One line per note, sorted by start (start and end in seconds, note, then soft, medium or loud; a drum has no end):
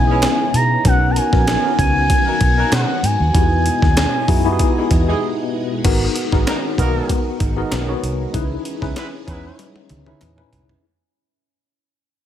0.00 0.25 B1 medium
0.00 0.83 C#3 medium
0.00 0.82 E3 medium
0.00 0.81 G#3 medium
0.00 0.82 B3 medium
0.00 0.84 B3 loud
0.00 0.82 C#4 medium
0.00 0.84 C#4 loud
0.00 0.85 D#4 medium
0.00 0.87 E4 medium
0.00 0.87 G#4 loud
0.00 0.55 G#5 loud
0.08 0.28 E3 medium
0.08 0.28 G#3 medium
0.08 0.28 C#4 medium
0.08 0.28 G#4 loud
0.23 snare loud
0.23 clap medium
0.23 closed hi-hat medium
0.54 0.75 B2 medium
0.54 0.84 A#5 medium
0.54 closed hi-hat medium
0.84 1.18 B1 loud
0.84 3.32 D#3 medium
0.84 3.32 F#3 medium
0.84 1.23 B3 medium
0.84 5.80 B3 medium
0.84 1.23 C#4 medium
0.84 1.24 D#4 medium
0.84 3.32 F#4 medium
0.84 1.24 F#4 medium
0.84 3.32 A#4 medium
0.84 1.24 A#4 medium
0.84 1.12 F#5 loud
0.84 kick loud
0.84 closed hi-hat medium
1.11 1.19 A#5 medium
1.16 1.78 G#5 loud
1.16 closed hi-hat medium
1.32 1.55 A#1 medium
1.32 1.58 B3 medium
1.32 1.58 C#4 medium
1.32 1.58 D#4 medium
1.32 1.58 F#4 medium
1.32 1.58 A#4 medium
1.32 kick loud
1.32 snare soft
1.47 snare loud
1.47 clap loud
1.47 closed hi-hat medium
1.64 2.65 B3 medium
1.64 2.65 C#4 medium
1.64 2.65 D#4 medium
1.64 2.66 F#4 medium
1.64 2.66 A#4 medium
1.79 2.12 C#2 medium
1.79 2.74 G#5 loud
1.79 kick medium
1.79 closed hi-hat medium
2.10 kick medium
2.10 closed hi-hat medium
2.26 2.39 F#3 medium
2.26 2.39 A#3 medium
2.26 2.39 D#4 medium
2.26 2.39 A#4 medium
2.41 2.62 B1 medium
2.41 kick loud
2.41 closed hi-hat medium
2.58 2.85 F#3 loud
2.58 2.85 A#3 medium
2.58 2.85 D#4 medium
2.58 2.85 A#4 loud
2.72 2.84 B2 loud
2.72 3.06 F#5 loud
2.72 snare loud
2.72 clap medium
2.72 closed hi-hat loud
3.03 3.15 G#2 medium
3.03 5.22 G#5 medium
3.03 closed hi-hat medium
3.20 3.30 D#2 medium
3.33 3.68 E2 loud
3.33 5.82 B2 medium
3.33 5.82 G#3 medium
3.33 4.11 B3 medium
3.33 4.11 D#4 medium
3.33 4.12 E4 medium
3.33 4.12 F#4 medium
3.33 3.42 G4 medium
3.33 5.82 G#4 medium
3.33 5.82 D#5 medium
3.33 kick loud
3.33 closed hi-hat medium
3.41 4.15 G#4 medium
3.66 closed hi-hat medium
3.82 4.04 D#2 medium
3.82 kick medium
3.82 snare soft
3.97 snare loud
3.97 clap loud
3.97 closed hi-hat medium
4.28 4.61 F#2 medium
4.28 4.42 B3 medium
4.28 4.42 D#4 medium
4.28 4.42 E4 medium
4.28 4.42 F#4 medium
4.28 4.42 G#4 loud
4.28 kick medium
4.28 open hi-hat medium
4.45 5.46 B3 medium
4.45 5.46 D#4 medium
4.45 5.46 E4 medium
4.45 5.46 F#4 medium
4.45 4.51 G4 medium
4.52 5.50 G#4 loud
4.59 kick medium
4.59 closed hi-hat medium
4.77 4.89 E3 medium
4.77 4.89 G#3 medium
4.77 4.89 D#4 medium
4.77 4.89 G#4 medium
4.91 5.12 E2 medium
4.91 kick medium
4.91 closed hi-hat medium
5.07 5.28 E3 medium
5.07 5.27 G#3 medium
5.07 5.28 D#4 medium
5.07 5.27 G#4 medium
5.84 6.06 G#1 loud
5.84 8.32 D#3 medium
5.84 10.80 G#3 medium
5.84 6.23 B3 medium
5.84 8.32 B3 medium
5.84 6.23 D#4 medium
5.84 6.23 F#4 medium
5.84 8.32 F#4 medium
5.84 6.23 G#4 medium
5.84 8.32 A#4 medium
5.84 6.24 A#4 medium
5.84 kick loud
5.84 closed hi-hat medium
5.84 crash medium
6.16 closed hi-hat medium
6.32 6.42 G#1 loud
6.32 6.70 B3 medium
6.32 6.70 D#4 medium
6.32 6.70 F#4 medium
6.32 6.70 G#4 medium
6.32 6.70 A#4 medium
6.32 kick medium
6.32 snare soft
6.47 6.58 F#3 loud
6.47 6.58 A#3 loud
6.47 6.58 D#4 loud
6.47 6.58 A#4 loud
6.47 snare loud
6.47 clap loud
6.47 closed hi-hat loud
6.78 6.99 B1 medium
6.78 7.19 F#3 medium
6.78 7.19 A#3 loud
6.78 7.41 B3 medium
6.78 7.42 D#4 medium
6.78 7.19 D#4 medium
6.78 7.42 F#4 medium
6.78 7.42 G#4 medium
6.78 7.19 A#4 loud
6.78 7.42 A#4 loud
6.78 kick medium
6.78 closed hi-hat medium
7.09 kick medium
7.09 closed hi-hat medium
7.40 7.62 G#1 medium
7.40 kick medium
7.40 closed hi-hat medium
7.56 7.82 B3 loud
7.56 7.82 D#4 medium
7.56 7.82 F#4 medium
7.56 7.82 G#4 medium
7.56 7.82 A#4 loud
7.72 7.93 B1 loud
7.72 snare loud
7.72 clap medium
7.72 closed hi-hat loud
7.88 8.26 B3 medium
7.88 8.26 D#4 medium
7.88 8.26 F#4 medium
7.88 8.26 G#4 medium
7.88 8.26 C#5 medium
8.03 8.24 C2 loud
8.03 closed hi-hat medium
8.33 8.55 C#2 loud
8.33 10.81 E3 medium
8.33 10.81 B3 medium
8.33 8.72 C#4 medium
8.33 10.81 C#4 medium
8.33 8.72 D#4 medium
8.33 8.73 E4 medium
8.33 10.81 G#4 loud
8.33 8.73 G#4 medium
8.33 8.73 B4 loud
8.33 kick loud
8.33 closed hi-hat medium
8.65 closed hi-hat medium
8.81 8.92 C#2 medium
8.81 9.19 C#4 medium
8.81 9.19 D#4 medium
8.81 9.19 E4 medium
8.81 9.20 G#4 medium
8.81 9.20 B4 loud
8.81 kick medium
8.81 snare soft
8.96 9.08 G#3 medium
8.96 9.08 B3 loud
8.96 9.08 E4 medium
8.96 9.08 B4 loud
8.96 snare loud
8.96 clap loud
8.96 closed hi-hat medium
9.27 9.49 E2 loud
9.27 9.69 G#3 medium
9.27 9.69 B3 loud
9.27 9.90 C#4 medium
9.27 9.91 D#4 medium
9.27 9.91 E4 medium
9.27 9.69 E4 medium
9.27 9.91 G#4 medium
9.27 9.69 B4 loud
9.27 9.91 C#5 loud
9.27 kick medium
9.27 closed hi-hat medium
9.59 closed hi-hat medium
9.59 high tom medium
9.76 high tom medium
9.89 10.12 C#2 medium
9.89 closed hi-hat medium
9.89 mid tom medium
10.06 10.31 C#4 medium
10.06 10.31 D#4 medium
10.06 10.32 E4 medium
10.06 10.32 G#4 medium
10.06 10.32 B4 medium
10.06 mid tom medium
10.21 10.43 E2 medium
10.21 clap loud
10.21 closed hi-hat loud
10.21 mid tom medium
10.37 10.75 C#4 medium
10.37 10.75 D#4 medium
10.37 10.75 E4 medium
10.37 10.75 G#4 medium
10.37 10.75 B4 medium
10.37 mid tom medium
10.53 10.74 C2 medium
10.53 closed hi-hat medium
10.53 floor tom medium
10.69 floor tom medium